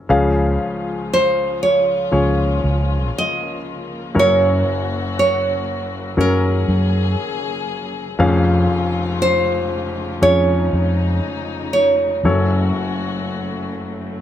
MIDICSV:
0, 0, Header, 1, 5, 480
1, 0, Start_track
1, 0, Key_signature, -5, "major"
1, 0, Tempo, 1013514
1, 42, Time_signature, 4, 2, 24, 8
1, 6731, End_track
2, 0, Start_track
2, 0, Title_t, "Nylon-string guitar"
2, 0, Program_c, 0, 24
2, 537, Note_on_c, 0, 72, 76
2, 769, Note_off_c, 0, 72, 0
2, 771, Note_on_c, 0, 73, 70
2, 1506, Note_off_c, 0, 73, 0
2, 1508, Note_on_c, 0, 75, 87
2, 1958, Note_off_c, 0, 75, 0
2, 1986, Note_on_c, 0, 73, 85
2, 2453, Note_off_c, 0, 73, 0
2, 2459, Note_on_c, 0, 73, 78
2, 2913, Note_off_c, 0, 73, 0
2, 2939, Note_on_c, 0, 70, 64
2, 3631, Note_off_c, 0, 70, 0
2, 4366, Note_on_c, 0, 72, 93
2, 4841, Note_off_c, 0, 72, 0
2, 4843, Note_on_c, 0, 73, 97
2, 5541, Note_off_c, 0, 73, 0
2, 5556, Note_on_c, 0, 73, 77
2, 6731, Note_off_c, 0, 73, 0
2, 6731, End_track
3, 0, Start_track
3, 0, Title_t, "Grand piano"
3, 0, Program_c, 1, 0
3, 0, Control_c, 1, 64, 127
3, 0, Note_on_c, 1, 61, 55
3, 0, Note_on_c, 1, 69, 49
3, 0, Note_on_c, 1, 73, 67
3, 44, Note_on_c, 1, 53, 76
3, 46, Note_off_c, 1, 61, 0
3, 46, Note_on_c, 1, 37, 63
3, 46, Note_on_c, 1, 61, 65
3, 47, Control_c, 1, 64, 0
3, 47, Note_on_c, 1, 49, 65
3, 47, Note_on_c, 1, 68, 72
3, 49, Note_on_c, 1, 77, 78
3, 50, Note_off_c, 1, 73, 0
3, 51, Note_off_c, 1, 69, 0
3, 128, Control_c, 1, 64, 127
3, 728, Note_off_c, 1, 53, 0
3, 729, Note_off_c, 1, 61, 0
3, 729, Note_off_c, 1, 68, 0
3, 730, Note_off_c, 1, 77, 0
3, 1002, Note_on_c, 1, 53, 57
3, 1002, Note_on_c, 1, 61, 53
3, 1006, Note_on_c, 1, 68, 55
3, 1006, Note_on_c, 1, 73, 66
3, 1687, Note_off_c, 1, 53, 0
3, 1688, Note_off_c, 1, 61, 0
3, 1689, Note_off_c, 1, 68, 0
3, 1689, Note_off_c, 1, 73, 0
3, 1950, Note_off_c, 1, 37, 0
3, 1950, Note_off_c, 1, 49, 0
3, 1964, Note_on_c, 1, 42, 56
3, 1964, Note_on_c, 1, 61, 53
3, 1964, Note_on_c, 1, 70, 61
3, 1965, Note_on_c, 1, 54, 63
3, 1966, Note_on_c, 1, 30, 54
3, 1967, Note_on_c, 1, 73, 66
3, 1973, Control_c, 1, 64, 0
3, 2062, Control_c, 1, 64, 127
3, 2647, Note_off_c, 1, 61, 0
3, 2647, Note_off_c, 1, 70, 0
3, 2648, Note_off_c, 1, 54, 0
3, 2649, Note_off_c, 1, 73, 0
3, 2922, Note_on_c, 1, 54, 63
3, 2925, Note_on_c, 1, 61, 61
3, 2925, Note_on_c, 1, 70, 60
3, 2928, Note_on_c, 1, 73, 62
3, 3604, Note_off_c, 1, 54, 0
3, 3606, Note_off_c, 1, 61, 0
3, 3606, Note_off_c, 1, 70, 0
3, 3607, Note_off_c, 1, 73, 0
3, 3862, Note_off_c, 1, 42, 0
3, 3863, Note_off_c, 1, 30, 0
3, 3878, Note_on_c, 1, 53, 78
3, 3880, Note_on_c, 1, 41, 74
3, 3882, Note_on_c, 1, 29, 70
3, 3882, Note_on_c, 1, 61, 71
3, 3882, Note_on_c, 1, 77, 84
3, 3884, Note_on_c, 1, 68, 68
3, 3888, Control_c, 1, 64, 0
3, 3978, Control_c, 1, 64, 127
3, 4561, Note_off_c, 1, 53, 0
3, 4563, Note_off_c, 1, 61, 0
3, 4563, Note_off_c, 1, 77, 0
3, 4564, Note_off_c, 1, 68, 0
3, 4839, Note_on_c, 1, 53, 60
3, 4840, Note_on_c, 1, 61, 64
3, 4841, Note_on_c, 1, 68, 56
3, 4843, Note_on_c, 1, 73, 65
3, 5520, Note_off_c, 1, 53, 0
3, 5521, Note_off_c, 1, 61, 0
3, 5521, Note_off_c, 1, 68, 0
3, 5523, Note_off_c, 1, 73, 0
3, 5778, Note_off_c, 1, 41, 0
3, 5779, Note_off_c, 1, 29, 0
3, 5800, Note_on_c, 1, 54, 64
3, 5802, Note_on_c, 1, 30, 50
3, 5802, Note_on_c, 1, 61, 57
3, 5802, Note_on_c, 1, 69, 60
3, 5803, Control_c, 1, 64, 0
3, 5803, Note_on_c, 1, 42, 51
3, 5803, Note_on_c, 1, 73, 71
3, 5881, Control_c, 1, 64, 127
3, 6481, Note_off_c, 1, 54, 0
3, 6482, Note_off_c, 1, 61, 0
3, 6483, Note_off_c, 1, 69, 0
3, 6483, Note_off_c, 1, 73, 0
3, 6731, Note_off_c, 1, 30, 0
3, 6731, Note_off_c, 1, 42, 0
3, 6731, End_track
4, 0, Start_track
4, 0, Title_t, "String section"
4, 0, Program_c, 2, 48
4, 42, Note_on_c, 2, 49, 59
4, 45, Note_on_c, 2, 56, 54
4, 46, Note_on_c, 2, 53, 56
4, 47, Note_on_c, 2, 65, 65
4, 997, Note_off_c, 2, 56, 0
4, 997, Note_on_c, 2, 58, 58
4, 1950, Note_off_c, 2, 53, 0
4, 1950, Note_off_c, 2, 65, 0
4, 1962, Note_on_c, 2, 66, 70
4, 1963, Note_on_c, 2, 54, 57
4, 2913, Note_off_c, 2, 66, 0
4, 2916, Note_on_c, 2, 68, 76
4, 3859, Note_off_c, 2, 58, 0
4, 3862, Note_off_c, 2, 54, 0
4, 3863, Note_off_c, 2, 49, 0
4, 3868, Note_off_c, 2, 68, 0
4, 3877, Note_on_c, 2, 53, 64
4, 3878, Note_on_c, 2, 65, 73
4, 3880, Note_on_c, 2, 49, 74
4, 3881, Note_on_c, 2, 56, 59
4, 4828, Note_off_c, 2, 65, 0
4, 4838, Note_on_c, 2, 63, 78
4, 5776, Note_off_c, 2, 53, 0
4, 5778, Note_off_c, 2, 56, 0
4, 5788, Note_off_c, 2, 63, 0
4, 5794, Note_on_c, 2, 57, 58
4, 5795, Note_on_c, 2, 66, 67
4, 5797, Note_on_c, 2, 54, 61
4, 6731, Note_off_c, 2, 49, 0
4, 6731, Note_off_c, 2, 54, 0
4, 6731, Note_off_c, 2, 57, 0
4, 6731, Note_off_c, 2, 66, 0
4, 6731, End_track
5, 0, Start_track
5, 0, Title_t, "Fingered electric bass"
5, 0, Program_c, 3, 33
5, 46, Note_on_c, 3, 37, 76
5, 266, Note_off_c, 3, 37, 0
5, 1007, Note_on_c, 3, 37, 77
5, 1228, Note_off_c, 3, 37, 0
5, 1250, Note_on_c, 3, 37, 73
5, 1469, Note_off_c, 3, 37, 0
5, 1970, Note_on_c, 3, 42, 83
5, 2189, Note_off_c, 3, 42, 0
5, 2924, Note_on_c, 3, 42, 79
5, 3145, Note_off_c, 3, 42, 0
5, 3166, Note_on_c, 3, 42, 81
5, 3386, Note_off_c, 3, 42, 0
5, 3879, Note_on_c, 3, 41, 75
5, 4101, Note_off_c, 3, 41, 0
5, 4841, Note_on_c, 3, 41, 85
5, 5061, Note_off_c, 3, 41, 0
5, 5082, Note_on_c, 3, 41, 72
5, 5301, Note_off_c, 3, 41, 0
5, 5795, Note_on_c, 3, 42, 73
5, 6017, Note_off_c, 3, 42, 0
5, 6731, End_track
0, 0, End_of_file